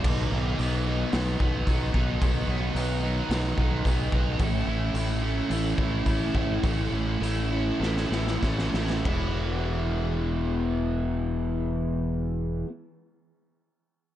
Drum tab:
CC |x---------------|----------------|----------------|----------------|
HH |o---o---o---o---|o---o---o---o---|o---o---o---o---|o---o-----------|
SD |--------o-------|--------o-------|----------------|--------oooooooo|
BD |o---------o-o-o-|o---------o-o-o-|o---------o-o-o-|o-----------o---|

CC |x---------------|----------------|
HH |----------------|----------------|
SD |----------------|----------------|
BD |o---------------|----------------|